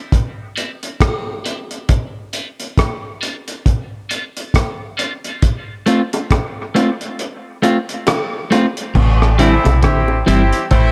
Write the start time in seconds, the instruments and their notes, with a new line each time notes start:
0.12 kick, closed hi-hat
0.56 clean electric guitar G3 C4 E4, closed hi-hat
0.83 closed hi-hat
1.00 kick, cross-stick, closed hi-hat
1.45 clean electric guitar G3 C4 E4, closed hi-hat
1.71 closed hi-hat
1.89 kick, closed hi-hat
2.33 clean electric guitar G3 B3 F4, closed hi-hat
2.60 closed hi-hat
2.78 kick, cross-stick, closed hi-hat
3.21 clean electric guitar G3 B3 F4, closed hi-hat
3.48 closed hi-hat
3.66 kick, closed hi-hat
4.09 clean electric guitar G3 B3 F4, closed hi-hat
4.37 closed hi-hat
4.54 kick, cross-stick, closed hi-hat
4.97 clean electric guitar G3 B3 F4, closed hi-hat
5.24 closed hi-hat
5.42 kick, closed hi-hat
5.86 clean electric guitar A3 C4 F4, closed hi-hat
6.13 closed hi-hat, high bongo
6.31 kick, cross-stick, closed hi-hat, high bongo
6.75 clean electric guitar A3 C4 F4, closed hi-hat, low bongo
7.01 closed hi-hat
7.19 closed hi-hat
7.62 clean electric guitar A3 C4 F4, closed hi-hat, high bongo
7.89 closed hi-hat
8.07 cross-stick, closed hi-hat, high bongo
8.51 clean electric guitar A3 C4 F4, closed hi-hat, high bongo, low bongo
8.77 closed hi-hat
8.95 fingered electric bass A1, clean electric guitar C3, kick, crash
9.22 cross-stick
9.39 clean electric guitar D3 G3 C4 E4, horn section A3 C4 E4, closed hi-hat
9.65 fingered electric bass B1, clean electric guitar C3, closed hi-hat, high bongo
9.82 fingered electric bass A1, clean electric guitar D3, horn section C4 E4 G4, kick, cross-stick, closed hi-hat
10.08 high bongo
10.26 fingered electric bass G1, clean electric guitar E3 G3 C4 E4, horn section C4 E4 G4, closed hi-hat
10.53 closed hi-hat
10.71 fingered electric bass A1, horn section A3 C4 E4, kick, closed hi-hat